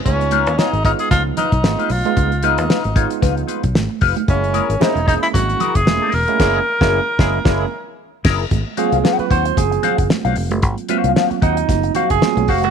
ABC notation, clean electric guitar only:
X:1
M:4/4
L:1/16
Q:"Swing 16ths" 1/4=113
K:Abmix
V:1 name="Clean electric guitar"
z2 [EF_c] z [EFd] z [EFd] z3 [EFc] z2 [EFc] z2 | z2 [EF_c] z [EFc] z [EFd] z [EFc] z [EFc] z3 [EFc] z | z2 [_FAB] z [FAc] z [FAc] z3 [FAB] z2 [FAB]2 z | [_FAB]2 z [FAB]2 z [FA]2 [FA]2 z4 [FAB]2 |
z2 [Gcf] z [Gcg]2 [Gcg] z3 [Gcf] z2 [Gcf] z2 | z2 [Gcf]2 [Gcf] z [Gcg] z3 [Gcf] z3 [Gcf] z |]